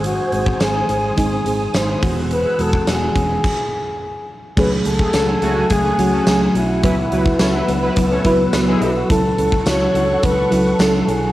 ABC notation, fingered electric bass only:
X:1
M:4/4
L:1/8
Q:1/4=106
K:F#dor
V:1 name="Fingered electric bass" clef=bass
G,,, G,,, G,,, G,,, G,,, G,,, G,,, E,,,- | E,,, E,,, E,,, E,,, z4 | C,, C,, C,, C,, C,, C,, C,, B,,, | C,, C,, C,, C,, C,, C,, C,, B,,, |
C,, C,, C,, C,, C,, C,, C,, B,,, |]